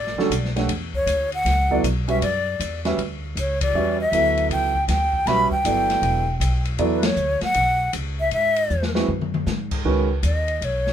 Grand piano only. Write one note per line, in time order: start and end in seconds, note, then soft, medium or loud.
0.18 0.30 D3 medium
0.18 0.30 G3 medium
0.18 0.30 C#4 medium
0.18 0.30 F#4 medium
0.18 0.30 A4 medium
0.56 0.68 A3 medium
0.56 0.68 D4 medium
0.56 0.68 G4 medium
0.56 0.68 C#5 medium
0.56 0.68 F#5 medium
1.71 1.83 F#3 medium
1.71 1.83 B3 medium
1.71 1.83 E4 medium
1.71 1.83 A4 medium
1.71 1.83 D5 medium
2.08 2.20 G3 medium
2.08 2.20 C#4 medium
2.08 2.21 F#4 medium
2.08 2.21 B4 medium
2.08 2.21 E5 medium
2.85 2.97 G3 medium
2.85 2.97 C#4 medium
2.85 2.97 F#4 medium
2.85 2.97 B4 medium
2.85 2.97 E5 medium
3.75 3.97 G3 medium
3.75 3.97 C#4 medium
3.75 3.97 F#4 medium
3.75 3.97 B4 medium
3.75 3.97 E5 medium
4.13 4.71 F#3 medium
4.13 4.71 B3 soft
4.13 4.71 E4 medium
4.13 4.71 A4 medium
4.13 4.71 E5 medium
5.27 5.49 G3 medium
5.27 5.49 C#4 medium
5.27 5.50 F#4 medium
5.27 5.50 B4 medium
5.27 5.50 E5 medium
5.65 6.23 F#3 medium
5.65 6.23 B3 soft
5.65 6.23 E4 medium
5.65 6.23 A4 medium
5.65 6.23 D5 medium
6.79 7.01 F#3 medium
6.79 7.01 B3 medium
6.79 7.02 E4 medium
6.79 7.01 A4 medium
6.79 7.01 D5 medium
8.95 9.07 G#3 medium
8.95 9.07 C4 medium
8.95 9.07 E4 medium
8.95 9.07 F#4 medium
8.95 9.07 B4 medium
9.85 10.07 D#3 medium
9.85 10.07 G#3 medium
9.85 10.07 C#4 medium
9.85 10.07 F#4 medium
9.85 10.07 B4 medium